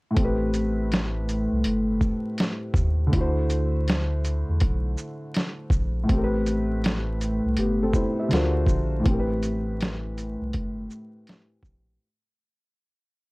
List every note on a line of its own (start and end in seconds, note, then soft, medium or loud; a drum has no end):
0.11 3.06 A2 medium
0.11 3.08 A3 medium
0.17 1.48 A1 loud
0.17 3.09 C4 medium
0.17 kick loud
0.17 closed hi-hat medium
0.21 3.11 G4 medium
0.21 3.13 B4 medium
0.54 closed hi-hat soft
0.54 shaker soft
0.92 snare loud
0.92 closed hi-hat medium
1.29 closed hi-hat soft
1.29 shaker soft
1.52 1.64 C2 medium
1.64 2.00 G1 medium
1.64 closed hi-hat loud
2.01 kick medium
2.01 shaker soft
2.38 snare loud
2.38 closed hi-hat medium
2.74 3.09 D#2 loud
2.74 kick medium
2.74 shaker medium
3.07 6.02 D3 medium
3.07 6.04 A3 medium
3.13 4.44 D2 medium
3.13 6.06 E4 medium
3.13 kick loud
3.13 closed hi-hat medium
3.17 6.07 F#4 medium
3.17 6.09 C5 medium
3.50 closed hi-hat soft
3.50 shaker soft
3.88 snare loud
3.88 closed hi-hat medium
4.25 closed hi-hat soft
4.25 shaker soft
4.49 4.61 E2 medium
4.60 4.96 B1 medium
4.60 kick medium
4.60 closed hi-hat medium
4.98 shaker soft
5.34 snare medium
5.34 closed hi-hat medium
5.70 6.06 A#1 loud
5.70 kick medium
5.70 shaker soft
6.03 8.24 A2 medium
6.03 8.26 A3 medium
6.09 7.40 A1 loud
6.09 7.55 C4 medium
6.09 kick loud
6.09 closed hi-hat medium
6.14 7.57 G4 medium
6.14 6.21 A#4 medium
6.24 7.62 B4 medium
6.46 closed hi-hat soft
6.46 shaker soft
6.84 snare loud
6.84 closed hi-hat medium
7.21 closed hi-hat soft
7.21 shaker soft
7.45 7.57 C2 medium
7.57 7.92 G1 loud
7.57 7.81 B3 medium
7.57 7.81 G4 medium
7.57 closed hi-hat medium
7.83 7.95 C4 medium
7.83 7.94 A4 medium
7.93 8.18 E4 medium
7.93 8.17 C5 medium
7.93 kick medium
7.93 shaker soft
8.19 8.54 G4 medium
8.19 8.54 E5 medium
8.29 8.66 D2 loud
8.29 9.04 D3 medium
8.29 9.05 D4 medium
8.29 9.05 F4 medium
8.29 closed hi-hat medium
8.33 9.06 F#4 medium
8.33 9.07 A#4 medium
8.33 9.07 C5 medium
8.33 snare loud
8.66 9.02 A#1 medium
8.66 kick medium
8.66 shaker soft
8.99 11.95 A2 medium
8.99 11.96 E3 medium
9.06 10.37 A1 medium
9.06 11.98 C4 medium
9.06 kick loud
9.06 closed hi-hat medium
9.10 12.00 G4 medium
9.10 9.18 A#4 medium
9.19 12.05 B4 medium
9.43 closed hi-hat soft
9.43 shaker soft
9.81 snare loud
9.81 closed hi-hat medium
10.18 closed hi-hat soft
10.18 shaker soft
10.41 10.53 C2 medium
10.53 10.89 G1 medium
10.53 kick medium
10.53 closed hi-hat medium
10.90 shaker soft
11.27 snare loud
11.27 closed hi-hat medium
11.63 11.98 A#1 loud
11.63 kick medium
11.63 shaker soft